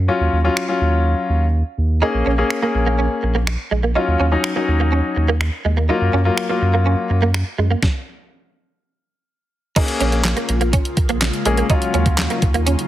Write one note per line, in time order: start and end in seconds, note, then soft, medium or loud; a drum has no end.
0.08 0.36 F#3 medium
0.08 0.36 C#4 medium
0.08 0.36 F4 medium
0.20 0.29 D#2 medium
0.33 0.49 D#2 medium
0.44 0.63 F#3 medium
0.44 0.63 C#4 medium
0.44 0.63 F4 medium
0.57 finger snap loud
0.68 1.43 F#3 medium
0.68 1.43 C#4 medium
0.68 1.44 F4 medium
0.81 1.14 D#2 medium
1.29 1.63 D#2 medium
1.78 2.03 D#2 medium
2.02 2.30 A#3 medium
2.02 2.30 C#4 medium
2.02 2.09 D#4 medium
2.02 2.30 G#4 medium
2.14 2.22 A#1 medium
2.26 2.43 A#1 medium
2.26 2.33 C#4 medium
2.38 2.57 A#3 medium
2.38 2.57 C#4 medium
2.38 2.57 G#4 medium
2.38 muted clean electric guitar stroke soft
2.50 finger snap medium
2.62 3.37 A#3 medium
2.62 2.70 A#3 medium
2.62 3.37 C#4 medium
2.62 3.37 G#4 medium
2.75 3.08 A#1 loud
2.75 muted clean electric guitar stroke soft
2.87 2.94 A#3 medium
2.99 3.06 C#4 medium
3.23 3.56 A#1 medium
3.23 muted clean electric guitar stroke soft
3.35 3.42 A#3 medium
3.47 finger snap loud
3.47 muted clean electric guitar stroke soft
3.71 3.96 A#1 medium
3.71 3.79 G#3 medium
3.83 3.91 A#3 medium
3.95 4.23 F#3 medium
3.95 4.24 C#4 medium
3.95 4.03 D#4 medium
3.95 4.24 F4 medium
4.08 4.16 D#2 medium
4.20 4.36 D#2 medium
4.20 4.27 C#4 medium
4.32 4.50 F#3 medium
4.32 4.50 C#4 medium
4.32 4.51 D#4 medium
4.32 muted clean electric guitar stroke soft
4.44 finger snap loud
4.56 5.31 F#3 medium
4.56 4.63 A#3 medium
4.56 5.31 C#4 medium
4.56 5.31 D#4 medium
4.68 5.01 D#2 loud
4.68 muted clean electric guitar stroke soft
4.80 4.87 A#3 medium
4.92 4.99 C#4 medium
5.16 5.50 D#2 medium
5.16 muted clean electric guitar stroke soft
5.28 5.36 A#3 medium
5.41 finger snap loud
5.41 muted clean electric guitar stroke soft
5.65 5.90 D#2 medium
5.65 5.72 G#3 medium
5.77 5.84 A#3 medium
5.89 6.17 F#3 medium
5.89 6.17 A#3 medium
5.89 5.96 D#4 medium
5.89 6.17 F4 medium
6.01 6.10 F#2 medium
6.13 6.30 F#2 medium
6.13 6.21 C#4 medium
6.25 6.44 F#3 medium
6.25 6.44 A#3 medium
6.25 6.44 F4 medium
6.25 muted clean electric guitar stroke soft
6.38 finger snap loud
6.49 7.24 F#3 medium
6.49 6.57 A#3 medium
6.49 7.24 A#3 medium
6.49 7.24 F4 medium
6.62 6.95 F#2 loud
6.62 muted clean electric guitar stroke soft
6.74 6.81 A#3 medium
6.86 6.93 C#4 medium
7.10 7.43 F#2 medium
7.10 muted clean electric guitar stroke soft
7.22 7.30 A#3 medium
7.34 finger snap loud
7.34 muted clean electric guitar stroke soft
7.58 7.75 F#2 medium
7.58 7.66 G#3 medium
7.71 7.78 A#3 medium
7.83 kick loud
7.83 snare medium
9.76 12.88 C#3 medium
9.76 11.68 G#3 medium
9.76 10.51 A#3 medium
9.76 11.68 A#3 medium
9.76 10.51 C#4 medium
9.76 9.84 D#4 medium
9.76 11.68 F4 medium
9.76 10.51 G#4 medium
9.76 kick loud
9.76 closed hi-hat medium
9.76 crash medium
9.88 closed hi-hat medium
10.00 10.34 A#1 loud
10.00 10.08 C#4 medium
10.00 closed hi-hat medium
10.12 muted clean electric guitar stroke soft
10.12 closed hi-hat soft
10.25 snare medium
10.25 clap loud
10.25 closed hi-hat medium
10.37 10.44 A#3 medium
10.37 closed hi-hat medium
10.49 10.82 A#1 loud
10.49 muted clean electric guitar stroke soft
10.49 closed hi-hat medium
10.61 10.68 A#3 medium
10.61 closed hi-hat soft
10.73 10.80 C#4 medium
10.73 kick loud
10.73 closed hi-hat medium
10.85 closed hi-hat medium
10.97 11.30 A#1 medium
10.97 muted clean electric guitar stroke soft
10.97 kick medium
10.97 closed hi-hat medium
11.09 11.17 A#3 medium
11.09 closed hi-hat medium
11.21 muted clean electric guitar stroke soft
11.21 snare medium
11.21 clap loud
11.21 closed hi-hat medium
11.33 closed hi-hat medium
11.45 11.62 A#1 medium
11.45 11.53 G#3 medium
11.45 11.64 A#3 medium
11.45 11.64 C#4 medium
11.45 11.64 G#4 medium
11.45 closed hi-hat medium
11.57 11.65 A#3 medium
11.57 closed hi-hat medium
11.69 12.44 F#3 medium
11.69 12.88 F#3 medium
11.69 12.44 C#4 medium
11.69 12.88 D#4 medium
11.69 11.77 D#4 medium
11.69 12.88 F4 medium
11.69 12.45 F4 medium
11.69 kick loud
11.69 closed hi-hat medium
11.82 closed hi-hat medium
11.94 12.27 D#2 loud
11.94 12.01 C#4 medium
11.94 closed hi-hat medium
12.06 muted clean electric guitar stroke soft
12.06 kick medium
12.06 closed hi-hat soft
12.18 snare medium
12.18 clap loud
12.18 closed hi-hat medium
12.30 12.38 A#3 medium
12.30 closed hi-hat medium
12.42 12.76 D#2 loud
12.42 muted clean electric guitar stroke soft
12.42 kick medium
12.42 closed hi-hat medium
12.54 12.62 A#3 medium
12.54 closed hi-hat medium
12.66 12.74 C#4 medium
12.66 closed hi-hat medium
12.79 closed hi-hat medium